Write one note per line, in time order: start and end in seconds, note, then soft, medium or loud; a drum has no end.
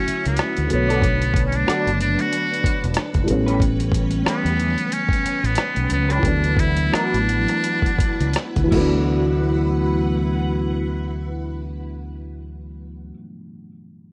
0.00 0.64 D3 medium
0.00 0.65 F#3 medium
0.00 0.66 A3 medium
0.00 0.25 C#4 medium
0.00 0.67 C#4 medium
0.00 0.68 C#4 medium
0.00 0.68 E4 medium
0.00 0.67 F#4 medium
0.00 0.68 E5 medium
0.08 muted fretless electric bass stroke soft
0.08 closed hi-hat medium
0.25 0.38 C#2 medium
0.25 0.68 B3 medium
0.25 closed hi-hat medium
0.37 cross-stick medium
0.37 closed hi-hat medium
0.37 muted conga soft
0.37 high conga soft
0.56 0.70 D2 medium
0.56 closed hi-hat soft
0.56 high conga medium
0.66 3.22 D3 medium
0.66 3.24 F#3 medium
0.66 3.25 D4 medium
0.66 3.26 A5 medium
0.66 closed hi-hat medium
0.66 high conga medium
0.66 low conga medium
0.71 1.64 B1 medium
0.71 3.25 A3 medium
0.71 1.42 B3 medium
0.71 3.26 B3 medium
0.71 8.68 B4 medium
0.75 3.27 C#5 medium
0.89 1.03 F#4 soft
0.89 1.02 A4 medium
0.89 1.02 D5 medium
0.89 closed hi-hat medium
1.01 kick loud
1.01 closed hi-hat medium
1.01 muted conga soft
1.22 closed hi-hat soft
1.34 kick medium
1.34 closed hi-hat medium
1.47 1.57 C#4 medium
1.52 2.00 D4 medium
1.52 closed hi-hat soft
1.52 high conga medium
1.66 1.88 F#4 medium
1.66 1.89 A4 medium
1.66 1.89 D5 medium
1.66 cross-stick loud
1.66 closed hi-hat medium
1.66 muted conga soft
1.86 2.15 F#1 medium
1.86 closed hi-hat soft
1.86 high conga soft
2.00 2.22 D4 medium
2.00 closed hi-hat medium
2.00 low conga medium
2.17 2.84 F#4 loud
2.17 closed hi-hat soft
2.17 high conga soft
2.31 closed hi-hat medium
2.31 muted conga soft
2.50 closed hi-hat soft
2.50 muted conga soft
2.64 muted fretless electric bass stroke soft
2.64 kick loud
2.64 closed hi-hat medium
2.83 2.96 E1 medium
2.83 closed hi-hat soft
2.94 cross-stick medium
2.94 closed hi-hat medium
2.94 muted conga soft
2.94 high conga soft
3.13 3.28 F#1 medium
3.13 kick medium
3.13 closed hi-hat soft
3.13 muted conga soft
3.13 high conga medium
3.24 5.84 E3 medium
3.24 5.85 G3 medium
3.24 6.20 C#4 medium
3.24 6.20 G5 medium
3.24 high conga medium
3.24 low conga medium
3.28 4.22 A1 medium
3.28 5.86 A3 medium
3.28 5.87 B3 medium
3.28 closed hi-hat medium
3.32 5.88 C#4 medium
3.47 3.61 C#4 medium
3.47 3.60 G4 medium
3.47 3.60 B4 medium
3.47 closed hi-hat medium
3.60 kick loud
3.60 closed hi-hat medium
3.78 closed hi-hat soft
3.78 muted conga soft
3.92 kick medium
3.92 closed hi-hat medium
4.10 closed hi-hat soft
4.10 high conga medium
4.25 4.94 B3 medium
4.25 4.46 C#4 medium
4.25 4.47 G4 medium
4.25 4.47 B4 medium
4.25 muted fretless electric bass stroke soft
4.25 cross-stick loud
4.25 closed hi-hat medium
4.25 muted conga soft
4.44 4.74 E2 medium
4.44 closed hi-hat soft
4.44 muted conga soft
4.44 high conga soft
4.59 closed hi-hat medium
4.59 low conga medium
4.76 closed hi-hat soft
4.76 high conga soft
4.90 5.47 C#4 medium
4.90 closed hi-hat medium
4.90 muted conga soft
5.09 kick medium
5.09 muted conga soft
5.13 closed hi-hat soft
5.25 muted fretless electric bass stroke soft
5.25 closed hi-hat medium
5.43 5.56 A1 medium
5.43 5.92 B3 medium
5.43 closed hi-hat soft
5.55 cross-stick medium
5.55 closed hi-hat medium
5.55 muted conga soft
5.55 high conga soft
5.75 5.89 B1 medium
5.75 closed hi-hat soft
5.75 muted conga soft
5.75 high conga medium
5.89 6.21 C#2 medium
5.89 6.13 B3 medium
5.89 closed hi-hat medium
5.89 high conga medium
5.89 low conga medium
6.09 6.24 C#4 medium
6.09 6.61 D4 medium
6.09 6.23 G4 medium
6.09 6.23 B4 medium
6.09 closed hi-hat soft
6.20 8.63 E3 medium
6.20 8.67 F#3 medium
6.20 8.69 F#5 medium
6.20 kick loud
6.24 6.88 D2 medium
6.24 8.68 A3 medium
6.24 8.69 B3 medium
6.24 8.69 E4 medium
6.24 closed hi-hat medium
6.24 muted conga soft
6.28 8.70 D4 medium
6.42 closed hi-hat soft
6.42 muted conga soft
6.57 6.95 E4 loud
6.57 kick loud
6.57 closed hi-hat medium
6.76 closed hi-hat soft
6.76 high conga medium
6.92 8.36 D4 medium
6.92 7.16 E4 medium
6.92 7.16 F#4 medium
6.92 7.17 B4 medium
6.92 muted fretless electric bass stroke soft
6.92 cross-stick loud
6.92 closed hi-hat medium
7.12 7.45 A1 medium
7.12 closed hi-hat soft
7.12 muted conga soft
7.12 high conga soft
7.29 closed hi-hat medium
7.29 low conga medium
7.47 cross-stick soft
7.47 closed hi-hat soft
7.47 high conga medium
7.62 closed hi-hat medium
7.62 muted conga soft
7.82 kick medium
7.82 closed hi-hat soft
7.82 muted conga soft
7.99 muted fretless electric bass stroke soft
7.99 kick loud
7.99 closed hi-hat medium
8.20 8.34 C#2 medium
8.20 closed hi-hat soft
8.34 cross-stick medium
8.34 closed hi-hat medium
8.34 muted conga soft
8.34 high conga soft
8.56 8.72 D2 medium
8.56 kick medium
8.56 closed hi-hat soft
8.56 high conga medium
8.64 13.03 E3 medium
8.68 13.07 F#3 medium
8.68 13.14 E4 medium
8.68 kick medium
8.68 crash medium
8.72 13.11 D2 medium
8.72 13.11 A3 medium
8.72 12.90 E4 medium
8.72 13.16 F#4 medium
8.72 12.90 B4 medium
8.72 13.18 B4 medium
8.72 12.90 F#5 loud
8.72 high conga medium
8.77 13.15 B3 medium
8.81 13.19 D4 medium